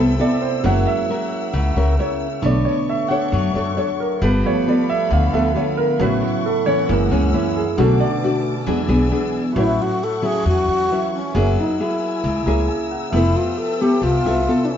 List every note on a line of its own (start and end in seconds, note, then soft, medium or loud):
0.00 0.18 C2 medium
0.00 0.62 C3 medium
0.00 0.66 G3 soft
0.00 0.66 A3 soft
0.00 0.15 B3 medium
0.00 0.65 B3 soft
0.00 0.16 E4 medium
0.00 0.16 A4 medium
0.00 0.62 A4 medium
0.00 0.17 C5 medium
0.00 0.62 G5 medium
0.00 0.62 B5 medium
0.00 2.40 E6 medium
0.19 0.62 B3 medium
0.19 0.62 E4 medium
0.19 0.62 A4 medium
0.19 0.42 D5 medium
0.42 0.63 C5 medium
0.63 0.85 F#1 loud
0.63 1.27 E3 soft
0.63 1.51 F#3 medium
0.63 1.27 G#3 soft
0.63 1.28 A#3 soft
0.63 1.05 C#4 medium
0.63 1.05 E4 medium
0.63 2.41 A#4 medium
0.63 1.05 A#4 medium
0.63 2.41 F#5 medium
0.63 0.86 F#5 medium
0.87 1.08 E5 medium
1.09 1.72 C#4 medium
1.09 1.73 E4 medium
1.09 1.73 A#4 medium
1.53 1.74 C#2 medium
1.53 2.40 C#3 medium
1.76 1.96 C#2 medium
1.76 1.95 C#4 medium
1.76 1.95 E4 medium
1.76 1.95 A#4 medium
1.99 2.27 C#4 medium
1.99 2.27 E4 medium
1.99 2.27 A#4 medium
1.99 2.40 C#5 medium
2.42 2.63 B1 loud
2.42 3.06 D3 soft
2.42 3.06 A3 soft
2.42 3.30 B3 medium
2.42 3.06 D4 medium
2.42 4.19 A4 medium
2.42 3.07 A4 medium
2.42 3.07 C#5 medium
2.42 2.65 D5 medium
2.42 4.19 C#6 medium
2.65 2.87 C#5 medium
2.90 3.10 E5 medium
3.08 3.51 D4 medium
3.08 3.51 A4 medium
3.08 3.51 C#5 medium
3.08 3.22 F#5 medium
3.32 3.53 F#2 medium
3.32 4.20 F#3 medium
3.54 3.75 F#2 medium
3.54 3.73 D4 medium
3.54 3.74 A4 medium
3.54 3.74 C#5 medium
3.77 4.19 D4 medium
3.77 4.20 A4 medium
3.77 3.98 C#5 medium
3.77 4.20 C#5 medium
4.00 4.21 A#4 medium
4.21 4.42 G1 loud
4.21 5.08 G3 medium
4.21 4.50 B3 medium
4.21 4.51 F4 medium
4.21 5.98 A4 medium
4.21 4.51 A4 medium
4.21 4.44 B4 medium
4.21 5.98 F5 medium
4.21 5.98 B5 medium
4.45 5.31 F3 soft
4.45 5.31 A3 soft
4.45 5.32 B3 soft
4.45 4.66 C#5 medium
4.67 5.11 B3 medium
4.67 5.11 F4 medium
4.67 5.11 A4 medium
4.67 4.89 D5 medium
4.90 5.10 E5 medium
5.10 5.31 D2 medium
5.10 5.97 D3 medium
5.10 5.33 F5 medium
5.32 5.54 D2 medium
5.32 5.53 F3 soft
5.32 5.53 A3 soft
5.32 5.53 B3 soft
5.32 5.52 B3 medium
5.32 5.52 F4 medium
5.32 5.52 A4 medium
5.32 5.55 E5 medium
5.55 5.84 B3 medium
5.55 5.84 F4 medium
5.55 5.84 A4 medium
5.55 5.77 C#5 medium
5.77 5.99 A#4 medium
5.98 6.20 A1 loud
5.98 6.87 A2 medium
5.98 6.62 C#3 soft
5.98 6.63 F#3 soft
5.98 6.44 F#3 medium
5.98 6.63 B3 medium
5.98 6.44 C#4 medium
5.98 6.45 E4 medium
5.98 6.88 A4 medium
5.98 6.22 B4 medium
5.98 7.76 F#5 medium
5.98 6.88 C#6 medium
6.23 6.44 E4 soft
6.46 6.67 A4 medium
6.66 7.07 E3 medium
6.66 7.08 A#3 medium
6.66 7.08 C#4 medium
6.66 6.88 C#5 medium
6.88 7.10 F#1 medium
6.88 7.76 F#2 medium
6.88 7.52 E3 soft
6.88 7.53 G#3 soft
6.88 7.53 A#3 soft
6.88 7.77 A#4 medium
6.88 7.12 A#4 medium
6.88 7.77 E6 medium
7.11 7.32 C#2 medium
7.11 7.30 E3 medium
7.11 7.30 A#3 medium
7.11 7.30 C#4 medium
7.11 7.33 C#4 medium
7.34 7.63 E3 medium
7.34 7.63 A#3 medium
7.34 7.64 C#4 medium
7.34 7.55 E4 medium
7.56 7.78 G#4 medium
7.77 7.99 B1 loud
7.77 8.65 B2 medium
7.77 8.41 D3 soft
7.77 8.41 A3 soft
7.77 8.07 A3 medium
7.77 8.42 C#4 medium
7.77 8.07 D4 medium
7.77 8.07 F#4 medium
7.77 8.01 A4 medium
7.77 8.66 B4 medium
7.77 8.67 A5 medium
7.77 8.66 D6 medium
8.00 8.14 D5 medium
8.23 8.53 A3 soft
8.23 8.53 D4 soft
8.23 8.53 F#4 medium
8.66 8.88 E2 loud
8.66 9.54 E3 medium
8.66 9.31 F#3 soft
8.66 9.31 G#3 soft
8.66 8.80 B3 medium
8.66 8.80 D4 medium
8.66 9.31 D4 soft
8.66 8.81 G#4 medium
8.66 9.55 D5 medium
8.66 9.55 G#5 medium
8.66 9.55 E6 medium
8.89 9.10 B1 medium
8.89 9.08 B3 medium
8.89 9.08 D4 medium
8.89 9.08 G#4 medium
9.11 9.40 B3 medium
9.11 9.40 D4 medium
9.11 9.41 G#4 medium
9.53 9.77 A1 loud
9.53 10.43 A2 medium
9.53 10.01 F#3 medium
9.53 10.86 E4 soft
9.53 10.87 F#4 soft
9.53 11.33 A4 medium
9.53 11.33 F#5 medium
9.57 10.01 C#4 soft
9.57 10.01 E4 medium
9.57 9.83 E4 medium
9.57 10.88 B4 soft
9.57 10.89 C#5 medium
9.57 11.33 C#6 medium
9.82 10.05 F#4 medium
10.04 10.27 A4 medium
10.22 10.86 F#3 medium
10.22 10.86 C#4 medium
10.22 10.86 E4 medium
10.22 10.47 G#4 medium
10.45 10.66 E2 medium
10.45 11.33 E3 medium
10.45 11.10 F#4 loud
10.68 10.88 E2 medium
10.89 11.21 F#3 medium
10.89 11.21 C#4 medium
10.89 11.30 E4 soft
10.89 11.21 E4 medium
10.89 11.35 F#4 soft
10.89 11.35 B4 soft
10.89 11.36 E5 soft
11.15 11.61 C#4 medium
11.32 11.55 F#1 loud
11.32 12.22 F#3 medium
11.32 11.64 A#3 medium
11.32 12.42 E4 soft
11.32 11.64 E4 medium
11.32 12.44 G#4 soft
11.32 13.11 A#4 medium
11.32 13.11 G#5 medium
11.32 14.77 E6 medium
11.36 11.64 G#4 medium
11.36 12.45 A#4 soft
11.36 12.46 C#5 medium
11.60 11.83 D#4 medium
11.79 12.43 A#3 medium
11.79 12.43 E4 medium
11.79 12.92 E4 medium
11.79 12.43 G#4 medium
12.24 12.45 C#2 medium
12.24 13.11 C#3 medium
12.45 12.67 C#2 medium
12.45 13.10 A#3 medium
12.45 13.13 E4 soft
12.45 13.10 E4 medium
12.45 13.13 G#4 soft
12.45 13.10 G#4 medium
12.45 13.13 A#4 soft
12.45 13.14 C#5 medium
12.45 12.67 A#5 medium
12.68 12.89 G#5 medium
12.91 13.12 F#5 medium
13.10 13.33 F1 loud
13.10 14.00 F3 medium
13.10 13.76 B3 medium
13.10 13.77 E4 medium
13.10 14.77 G4 soft
13.10 13.77 A4 medium
13.10 14.77 B4 medium
13.10 14.77 E5 medium
13.10 14.77 G5 medium
13.10 14.77 A5 medium
13.14 13.38 E4 loud
13.14 14.77 A4 soft
13.14 14.77 B4 medium
13.37 13.60 F4 medium
13.58 13.83 A4 loud
13.81 14.22 B3 medium
13.81 14.22 E4 medium
13.81 14.04 G4 medium
13.81 14.22 A4 medium
14.02 14.23 C2 medium
14.02 14.77 C3 medium
14.02 14.66 F4 loud
14.25 14.45 C2 medium
14.25 14.44 B3 medium
14.25 14.44 E4 medium
14.25 14.44 A4 medium
14.48 14.77 B3 medium
14.48 14.77 E4 soft
14.48 14.77 A4 medium
14.65 14.72 D4 medium
14.70 14.77 C#4 medium